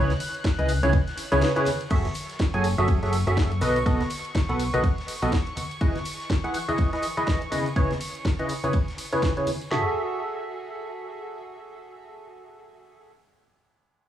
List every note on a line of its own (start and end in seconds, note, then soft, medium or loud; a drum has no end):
0.00 0.10 C#2 loud
0.00 0.12 C#3 loud
0.00 0.12 E4 medium
0.00 0.12 G#4 medium
0.00 0.12 B4 medium
0.00 0.12 C#5 loud
0.00 1.92 F#6 medium
0.10 snare soft
0.10 closed hi-hat soft
0.10 high conga medium
0.20 open hi-hat loud
0.20 ride medium
0.20 tambourine medium
0.34 closed hi-hat soft
0.34 tambourine soft
0.44 kick loud
0.44 snare loud
0.44 closed hi-hat medium
0.44 ride medium
0.44 tambourine soft
0.44 high conga medium
0.58 0.80 C#2 loud
0.58 0.72 C#3 medium
0.58 0.72 E4 medium
0.58 0.72 G#4 medium
0.58 0.72 B4 medium
0.58 0.72 D#5 medium
0.58 closed hi-hat soft
0.58 ride soft
0.68 open hi-hat medium
0.68 ride medium
0.68 tambourine medium
0.83 0.94 C#2 medium
0.83 0.96 C#3 medium
0.83 0.96 E4 medium
0.83 0.97 G#4 medium
0.83 0.96 B4 medium
0.83 0.97 C#5 medium
0.83 closed hi-hat soft
0.83 tambourine soft
0.83 high conga medium
0.92 kick loud
0.92 closed hi-hat medium
0.92 ride medium
0.92 tambourine soft
1.08 snare soft
1.08 closed hi-hat soft
1.17 open hi-hat loud
1.17 ride medium
1.17 tambourine medium
1.32 1.42 C#2 loud
1.32 1.52 C#3 medium
1.32 1.52 E4 medium
1.32 1.52 G#4 medium
1.32 1.52 B4 medium
1.32 1.52 C#5 loud
1.32 closed hi-hat soft
1.32 ride soft
1.32 tambourine medium
1.32 high conga medium
1.41 snare loud
1.41 closed hi-hat medium
1.41 ride loud
1.41 tambourine soft
1.56 1.70 C#3 medium
1.56 1.70 E4 medium
1.56 1.70 G#4 medium
1.56 1.70 B4 medium
1.56 1.70 C#5 loud
1.56 closed hi-hat soft
1.66 snare loud
1.66 open hi-hat medium
1.66 ride medium
1.66 tambourine medium
1.66 high conga medium
1.80 closed hi-hat soft
1.80 tambourine soft
1.90 2.05 F#1 loud
1.90 2.07 F#3 medium
1.90 2.07 F#4 medium
1.90 2.07 G#4 medium
1.90 2.07 A4 medium
1.90 2.07 E5 loud
1.90 9.72 C#6 medium
1.90 kick loud
1.90 closed hi-hat medium
1.90 crash medium
1.90 ride loud
1.90 tambourine soft
2.05 snare soft
2.05 closed hi-hat soft
2.05 high conga loud
2.14 open hi-hat loud
2.14 ride medium
2.14 tambourine medium
2.30 snare soft
2.30 closed hi-hat soft
2.30 tambourine soft
2.40 kick loud
2.40 snare loud
2.40 closed hi-hat medium
2.40 ride medium
2.40 tambourine soft
2.40 high conga medium
2.54 2.75 F#1 loud
2.54 2.67 F#3 medium
2.54 2.67 F#4 medium
2.54 2.67 G#4 medium
2.54 2.67 A4 medium
2.54 2.67 G#5 loud
2.54 closed hi-hat soft
2.64 open hi-hat medium
2.64 ride medium
2.64 tambourine medium
2.77 3.00 F#1 medium
2.77 2.99 F#3 medium
2.77 2.99 F#4 medium
2.77 2.99 G#4 medium
2.77 2.99 A4 medium
2.77 2.99 E5 medium
2.77 closed hi-hat soft
2.77 tambourine soft
2.77 high conga medium
2.88 kick loud
2.88 closed hi-hat medium
2.88 ride medium
2.88 tambourine soft
3.03 3.24 F#1 medium
3.03 3.16 F#3 medium
3.03 3.16 F#4 medium
3.03 3.16 G#4 medium
3.03 3.16 A4 medium
3.03 3.16 E5 medium
3.03 snare soft
3.03 closed hi-hat soft
3.12 open hi-hat loud
3.12 ride medium
3.12 tambourine loud
3.27 3.60 F#1 medium
3.27 3.51 F#3 medium
3.27 3.51 F#4 medium
3.27 3.51 G#4 medium
3.27 3.51 A4 medium
3.27 3.51 E5 medium
3.27 closed hi-hat soft
3.27 tambourine soft
3.27 high conga medium
3.37 kick loud
3.37 snare loud
3.37 closed hi-hat medium
3.37 ride medium
3.37 tambourine soft
3.52 closed hi-hat soft
3.61 3.84 B1 medium
3.61 3.78 B3 medium
3.61 3.78 F#4 medium
3.61 3.78 A4 medium
3.61 3.78 B4 medium
3.61 3.78 D#5 loud
3.61 open hi-hat medium
3.61 ride medium
3.61 tambourine loud
3.61 high conga medium
3.76 closed hi-hat soft
3.76 tambourine medium
3.86 4.01 B1 medium
3.86 4.03 B3 loud
3.86 4.03 F#4 medium
3.86 4.03 A4 medium
3.86 4.03 B4 medium
3.86 4.03 D#5 loud
3.86 kick loud
3.86 closed hi-hat medium
3.86 ride medium
3.86 tambourine soft
4.00 snare soft
4.00 closed hi-hat soft
4.00 high conga medium
4.10 open hi-hat loud
4.10 ride medium
4.10 tambourine medium
4.24 closed hi-hat soft
4.24 tambourine medium
4.34 kick loud
4.34 snare loud
4.34 closed hi-hat medium
4.34 ride medium
4.34 tambourine soft
4.34 high conga medium
4.49 4.71 B1 medium
4.49 4.62 B3 medium
4.49 4.62 F#4 medium
4.49 4.62 A4 medium
4.49 4.62 B4 medium
4.49 4.62 F#5 medium
4.49 closed hi-hat soft
4.49 ride soft
4.59 open hi-hat medium
4.59 ride medium
4.59 tambourine medium
4.73 4.84 B1 loud
4.73 4.87 B3 medium
4.73 4.87 F#4 medium
4.73 4.87 A4 medium
4.73 4.87 B4 medium
4.73 4.87 D#5 medium
4.73 closed hi-hat soft
4.73 tambourine medium
4.73 high conga medium
4.83 kick loud
4.83 closed hi-hat medium
4.83 ride medium
4.83 tambourine soft
4.98 snare soft
4.98 closed hi-hat soft
5.08 open hi-hat loud
5.08 ride medium
5.08 tambourine medium
5.22 5.33 B1 medium
5.22 5.36 B3 medium
5.22 5.36 F#4 medium
5.22 5.36 A4 medium
5.22 5.36 B4 medium
5.22 5.36 D#5 medium
5.22 closed hi-hat soft
5.22 ride soft
5.22 tambourine medium
5.22 high conga medium
5.32 kick loud
5.32 snare loud
5.32 closed hi-hat medium
5.32 ride medium
5.32 tambourine soft
5.47 closed hi-hat soft
5.57 open hi-hat medium
5.57 ride medium
5.57 tambourine medium
5.57 high conga loud
5.71 closed hi-hat soft
5.71 tambourine medium
5.81 5.98 E3 medium
5.81 5.98 E4 medium
5.81 5.98 G#4 medium
5.81 5.98 B4 medium
5.81 5.98 D#5 medium
5.81 kick loud
5.81 closed hi-hat medium
5.81 ride medium
5.81 tambourine soft
5.95 snare soft
5.95 closed hi-hat soft
5.95 high conga medium
6.05 open hi-hat loud
6.05 ride medium
6.05 tambourine medium
6.20 snare soft
6.20 tambourine medium
6.30 kick loud
6.30 snare loud
6.30 closed hi-hat medium
6.30 ride medium
6.30 tambourine soft
6.30 high conga medium
6.44 6.57 E3 medium
6.44 6.57 E4 medium
6.44 6.57 G#4 medium
6.44 6.57 B4 medium
6.44 6.57 F#5 loud
6.44 closed hi-hat soft
6.54 open hi-hat medium
6.54 ride medium
6.54 tambourine loud
6.69 6.90 E3 medium
6.69 6.90 E4 medium
6.69 6.90 G#4 medium
6.69 6.90 B4 medium
6.69 6.90 D#5 loud
6.69 closed hi-hat soft
6.69 tambourine soft
6.69 high conga medium
6.78 kick loud
6.78 closed hi-hat medium
6.78 ride medium
6.78 tambourine soft
6.93 7.06 E3 medium
6.93 7.06 E4 medium
6.93 7.06 G#4 medium
6.93 7.06 B4 medium
6.93 7.06 D#5 medium
6.93 snare soft
6.93 closed hi-hat soft
7.02 open hi-hat loud
7.02 ride medium
7.02 tambourine loud
7.17 7.41 E3 medium
7.17 7.41 E4 medium
7.17 7.41 G#4 medium
7.17 7.41 B4 medium
7.17 7.41 D#5 medium
7.17 closed hi-hat soft
7.17 tambourine soft
7.17 high conga medium
7.27 kick loud
7.27 snare loud
7.27 closed hi-hat medium
7.27 ride medium
7.27 tambourine soft
7.42 closed hi-hat soft
7.52 7.68 C#3 medium
7.52 7.68 E4 medium
7.52 7.68 G#4 medium
7.52 7.68 B4 medium
7.52 7.68 D#5 medium
7.52 open hi-hat loud
7.52 ride medium
7.52 tambourine medium
7.52 high conga medium
7.66 closed hi-hat soft
7.66 tambourine medium
7.76 7.93 C#3 loud
7.76 7.93 E4 medium
7.76 7.93 G#4 medium
7.76 7.93 B4 medium
7.76 7.93 C#5 loud
7.76 kick loud
7.76 closed hi-hat medium
7.76 ride medium
7.76 tambourine soft
7.91 snare soft
7.91 closed hi-hat soft
7.91 high conga medium
8.01 open hi-hat loud
8.01 ride medium
8.01 tambourine medium
8.15 closed hi-hat soft
8.15 tambourine medium
8.25 kick loud
8.25 snare loud
8.25 closed hi-hat medium
8.25 ride medium
8.25 tambourine soft
8.25 high conga medium
8.39 8.53 C#3 medium
8.39 8.53 E4 medium
8.39 8.53 G#4 medium
8.39 8.53 B4 medium
8.39 8.53 D#5 medium
8.39 closed hi-hat soft
8.39 ride soft
8.49 open hi-hat medium
8.49 ride medium
8.49 tambourine medium
8.64 8.77 C#3 medium
8.64 8.77 E4 medium
8.64 8.77 G#4 medium
8.64 8.77 B4 medium
8.64 8.77 C#5 medium
8.64 closed hi-hat soft
8.64 tambourine medium
8.64 high conga medium
8.73 kick loud
8.73 closed hi-hat medium
8.73 ride medium
8.73 tambourine soft
8.88 snare soft
8.88 closed hi-hat soft
8.98 open hi-hat loud
8.98 ride medium
8.98 tambourine loud
9.12 9.33 C#3 medium
9.12 9.33 E4 medium
9.12 9.33 G#4 medium
9.12 9.33 B4 medium
9.12 9.33 C#5 loud
9.12 closed hi-hat soft
9.12 ride soft
9.12 tambourine medium
9.12 high conga medium
9.22 kick loud
9.22 snare loud
9.22 closed hi-hat medium
9.22 ride medium
9.22 tambourine soft
9.37 9.50 C#3 medium
9.37 9.50 E4 medium
9.37 9.50 G#4 medium
9.37 9.50 B4 medium
9.37 9.50 C#5 medium
9.37 closed hi-hat soft
9.47 open hi-hat medium
9.47 ride medium
9.47 tambourine loud
9.47 high conga medium
9.61 closed hi-hat soft
9.61 tambourine medium
9.71 13.12 F#4 medium
9.71 13.12 G#4 medium
9.71 13.12 A4 medium
9.71 13.12 E5 medium
9.71 snare loud
9.71 floor tom loud